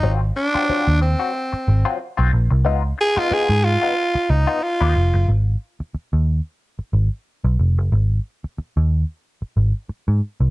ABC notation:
X:1
M:4/4
L:1/16
Q:"Swing 16ths" 1/4=91
K:Abmix
V:1 name="Tenor saxophone"
z2 =D4 C6 z4 | z2 A F A2 F4 E2 F4 | z16 | z16 |]
V:2 name="Clean electric guitar"
[G,CF] z2 [G,CF] [G,CF] z2 [G,CG] z3 [G,CF] z [G,CF] z2 | [_CEF] z2 [CEF] [CEF] z2 [CEF] z3 [CEF] z [CEF] z2 | z16 | z16 |]
V:3 name="Picked electric bass" clef=bass
A,,,2 z3 E,,2 z3 A,,, z2 _C,, B,,, =C,, | D,,2 z3 A,,2 z3 D,, z2 E,, F,,, G,,, | A,,,2 z3 E,,2 z3 A,,, z2 _C,, F,,, G,,, | A,,,2 z3 E,,2 z3 A,,, z2 A,, z C,, |]